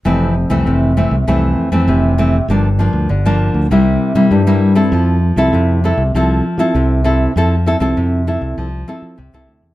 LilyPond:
<<
  \new Staff \with { instrumentName = "Nylon-string guitar" } { \time 4/4 \key f \major \tempo 4 = 99 << { <e a c'>8 r16 <e a c'>8. <e a c'>16 r16 <e a c'>8. <e a c'>8. <e a c'>16 r16 | <f bes d'>16 r16 <f bes d'>8 r16 <f bes d'>8. <g bes e'>8. <g bes e'>8 <g bes e'>8 <c' e' a'>16~ | <c' e' a'>8 r16 <c' e' a'>8. <c' e' a'>16 r16 <c' e' a'>8 r16 <c' e' a'>8. <c' e' a'>8 | <c' e' a'>16 r16 <c' e' a'>16 <c' e' a'>8. <c' e' a'>8. r16 <c' e' a'>8 r16 <c' e' a'>8. | } \\ { f,4 c4 f,4 c4 | g,4 d4 c4 g,4 | f4 c4 f4 c4 | f4 c4 f4 c4 | } >> }
  \new Staff \with { instrumentName = "Fingered electric bass" } { \clef bass \time 4/4 \key f \major f,,8. c,16 f,,8. c,16 c,8 r16 f,16 f,,4 | g,,8. d,16 g,,8. d,16 c,8 r16 c16 g,4 | f,8. c,16 f,8. c,16 c,8 r16 f16 c,4 | f,8. c,16 f,8. c,16 c,8 r16 f16 c,16 c,16 d,16 e,16 | }
>>